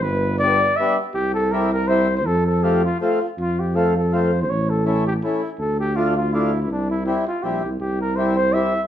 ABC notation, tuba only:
X:1
M:3/4
L:1/8
Q:"Swing" 1/4=162
K:F
V:1 name="Tuba" clef=bass
G,,,6 | C,,6 | F,,6 | F,,6 |
A,,,6 | D,,6 | C,,4 B,,, C,, | C,,6 |]